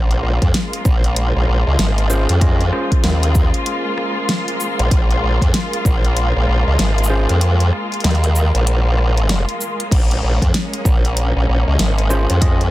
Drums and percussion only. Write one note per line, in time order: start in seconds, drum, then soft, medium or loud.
0.11 closed hi-hat soft
0.42 kick medium
0.42 closed hi-hat soft
0.54 snare loud
0.54 closed hi-hat medium
0.73 closed hi-hat soft
0.85 kick loud
0.85 shaker medium
1.04 closed hi-hat soft
1.16 closed hi-hat medium
1.79 snare loud
1.79 closed hi-hat medium
1.98 closed hi-hat soft
2.10 shaker medium
2.29 closed hi-hat medium
2.41 kick loud
2.41 closed hi-hat medium
2.61 closed hi-hat soft
2.73 cross-stick soft
2.92 kick medium
2.92 closed hi-hat soft
3.04 snare loud
3.04 closed hi-hat medium
3.23 closed hi-hat medium
3.35 kick loud
3.35 shaker medium
3.54 closed hi-hat soft
3.66 closed hi-hat medium
3.98 cross-stick medium
4.29 snare loud
4.29 closed hi-hat medium
4.48 closed hi-hat soft
4.60 shaker medium
4.79 closed hi-hat medium
4.91 kick loud
4.91 closed hi-hat medium
5.11 closed hi-hat soft
5.42 kick medium
5.42 closed hi-hat soft
5.54 snare loud
5.54 closed hi-hat medium
5.73 closed hi-hat medium
5.85 kick loud
5.85 shaker medium
6.05 closed hi-hat soft
6.17 closed hi-hat medium
6.79 snare loud
6.79 closed hi-hat medium
6.98 closed hi-hat soft
7.04 shaker medium
7.29 closed hi-hat medium
7.41 closed hi-hat medium
7.60 closed hi-hat soft
7.73 cross-stick soft
7.92 closed hi-hat soft
7.94 closed hi-hat soft
8.00 snare loud
8.00 closed hi-hat soft
8.04 closed hi-hat medium
8.11 closed hi-hat soft
8.15 closed hi-hat soft
8.24 closed hi-hat medium
8.36 shaker medium
8.55 closed hi-hat soft
8.67 closed hi-hat medium
8.98 cross-stick medium
9.17 closed hi-hat soft
9.29 snare loud
9.29 closed hi-hat medium
9.49 closed hi-hat soft
9.61 shaker medium
9.80 closed hi-hat medium
9.91 kick loud
9.91 closed hi-hat medium
9.91 crash medium
10.11 closed hi-hat soft
10.42 kick medium
10.42 closed hi-hat soft
10.54 snare loud
10.54 closed hi-hat medium
10.73 closed hi-hat medium
10.85 kick loud
10.85 shaker medium
11.05 closed hi-hat soft
11.17 closed hi-hat medium
11.79 snare loud
11.79 closed hi-hat medium
11.98 closed hi-hat soft
12.10 shaker medium
12.30 closed hi-hat medium
12.42 kick loud
12.42 closed hi-hat medium
12.61 closed hi-hat soft